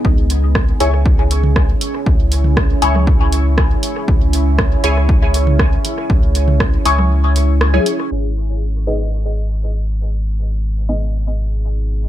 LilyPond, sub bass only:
\new Staff \with { instrumentName = "Sub bass" } { \clef bass \time 4/4 \key gis \minor \tempo 4 = 119 cis,4. cis,2 r8 | cis,4. cis,2 r8 | cis,4. cis,2 r8 | cis,4. cis,2 r8 |
gis,,1~ | gis,,1 | }